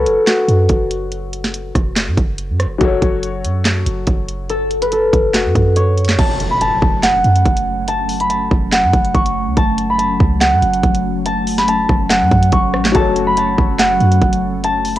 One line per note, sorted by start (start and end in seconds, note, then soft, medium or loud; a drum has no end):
0.00 2.75 F#3 medium
0.00 0.27 F#4 medium
0.00 2.76 F#4 medium
0.00 2.05 A4 medium
0.00 2.77 A4 medium
0.00 1.80 B4 medium
0.00 0.92 C#5 medium
0.00 2.78 C#5 medium
0.06 0.17 F#1 loud
0.06 closed hi-hat medium
0.27 2.71 F#4 medium
0.27 snare loud
0.27 clap loud
0.27 closed hi-hat medium
0.48 0.69 F#2 loud
0.48 closed hi-hat medium
0.69 1.71 F#1 loud
0.69 kick medium
0.69 closed hi-hat medium
0.91 closed hi-hat medium
1.12 closed hi-hat medium
1.33 closed hi-hat medium
1.44 snare medium
1.54 closed hi-hat loud
1.75 2.09 F1 loud
1.75 kick loud
1.75 cross-stick medium
1.75 closed hi-hat medium
1.96 snare loud
1.96 clap medium
1.96 closed hi-hat medium
2.07 2.17 F#2 loud
2.17 2.51 F#1 loud
2.17 kick loud
2.17 closed hi-hat medium
2.38 closed hi-hat medium
2.50 2.67 F#2 loud
2.60 cross-stick loud
2.60 closed hi-hat medium
2.65 2.80 F#1 loud
2.78 3.01 F#1 loud
2.78 6.13 F#3 medium
2.78 6.15 F#4 medium
2.78 kick loud
2.78 closed hi-hat medium
2.82 6.16 A4 medium
2.82 6.17 C#5 medium
3.02 3.46 F#1 loud
3.02 kick loud
3.02 closed hi-hat medium
3.23 closed hi-hat medium
3.44 3.84 F#2 loud
3.44 closed hi-hat medium
3.65 snare loud
3.65 clap loud
3.65 closed hi-hat medium
3.86 4.07 F#1 loud
3.86 closed hi-hat medium
4.07 5.09 F#1 loud
4.07 kick medium
4.07 closed hi-hat medium
4.29 closed hi-hat medium
4.50 4.92 A4 medium
4.50 closed hi-hat medium
4.71 closed hi-hat medium
4.82 6.87 B4 medium
4.82 closed hi-hat medium
4.92 7.12 A4 medium
4.92 closed hi-hat medium
5.13 5.47 F#1 loud
5.13 kick loud
5.13 closed hi-hat medium
5.34 7.77 F#4 medium
5.34 snare loud
5.34 clap medium
5.34 closed hi-hat medium
5.45 5.55 F#2 loud
5.55 6.16 F#2 loud
5.55 kick loud
5.55 closed hi-hat medium
5.76 7.68 C#5 medium
5.76 closed hi-hat loud
5.98 closed hi-hat medium
6.05 closed hi-hat medium
6.09 snare medium
6.09 clap medium
6.09 closed hi-hat medium
6.19 6.80 F#1 loud
6.19 14.99 F#3 medium
6.19 14.99 A3 medium
6.19 14.99 C#4 medium
6.19 6.61 A5 loud
6.19 kick loud
6.19 closed hi-hat medium
6.19 crash loud
6.19 impact medium
6.40 closed hi-hat medium
6.51 7.86 B5 medium
6.61 7.88 A5 medium
6.61 closed hi-hat loud
6.82 7.23 F#1 loud
6.82 kick loud
7.03 8.64 F#5 medium
7.03 snare loud
7.03 clap loud
7.03 closed hi-hat medium
7.24 7.45 F#2 loud
7.24 closed hi-hat soft
7.36 closed hi-hat medium
7.45 8.47 F#1 loud
7.45 kick medium
7.45 closed hi-hat medium
7.57 closed hi-hat medium
7.88 8.29 A5 loud
7.88 closed hi-hat medium
8.09 closed hi-hat medium
8.09 open hi-hat medium
8.20 9.56 B5 medium
8.20 closed hi-hat medium
8.30 9.57 A5 medium
8.30 closed hi-hat loud
8.51 8.85 F1 loud
8.51 kick loud
8.72 10.33 F#5 medium
8.72 snare loud
8.72 clap loud
8.72 closed hi-hat medium
8.83 8.93 F#2 loud
8.93 9.14 F#1 loud
8.93 kick loud
8.93 closed hi-hat medium
9.05 closed hi-hat medium
9.14 9.48 F#1 loud
9.14 10.41 C#6 medium
9.14 kick loud
9.14 closed hi-hat medium
9.26 closed hi-hat medium
9.47 9.56 C#2 loud
9.57 10.18 F#1 loud
9.57 9.98 A5 loud
9.57 kick loud
9.57 closed hi-hat medium
9.78 closed hi-hat medium
9.90 11.25 B5 medium
9.98 11.26 A5 medium
9.98 closed hi-hat loud
10.20 10.54 C#2 loud
10.20 kick loud
10.41 12.02 F#5 loud
10.41 snare loud
10.41 clap loud
10.41 closed hi-hat medium
10.53 10.62 F#2 loud
10.62 10.83 F#1 loud
10.62 closed hi-hat soft
10.74 closed hi-hat medium
10.83 11.85 F#1 loud
10.83 kick medium
10.83 closed hi-hat medium
10.95 closed hi-hat medium
11.26 11.68 A5 medium
11.26 closed hi-hat medium
11.47 open hi-hat medium
11.58 12.93 B5 medium
11.58 snare medium
11.68 12.95 A5 medium
11.68 closed hi-hat medium
11.89 12.23 F#1 loud
11.89 kick loud
11.89 cross-stick medium
12.09 13.70 F#5 medium
12.09 snare loud
12.09 clap loud
12.09 closed hi-hat medium
12.21 12.31 F#2 loud
12.31 12.52 F#2 loud
12.31 kick loud
12.31 closed hi-hat soft
12.43 closed hi-hat medium
12.52 12.75 F#1 loud
12.52 13.79 C#6 medium
12.52 kick medium
12.52 closed hi-hat medium
12.74 12.94 A1 loud
12.74 cross-stick loud
12.85 snare loud
12.85 clap medium
12.92 13.56 F#1 loud
12.92 14.99 F#3 medium
12.92 14.99 F#4 medium
12.92 13.37 A5 loud
12.92 kick loud
12.92 closed hi-hat medium
12.96 14.99 A4 medium
12.96 14.99 C#5 medium
13.16 closed hi-hat medium
13.27 14.62 B5 medium
13.37 14.64 A5 medium
13.37 closed hi-hat loud
13.58 13.99 F#1 loud
13.58 kick loud
13.79 14.99 F#5 loud
13.79 snare loud
13.79 clap loud
13.79 closed hi-hat medium
14.00 14.21 F#2 loud
14.00 closed hi-hat soft
14.12 closed hi-hat medium
14.21 14.99 F#1 loud
14.21 kick medium
14.21 closed hi-hat medium
14.33 closed hi-hat medium
14.64 14.99 A5 loud
14.64 closed hi-hat medium
14.85 closed hi-hat medium
14.85 open hi-hat medium
14.96 closed hi-hat medium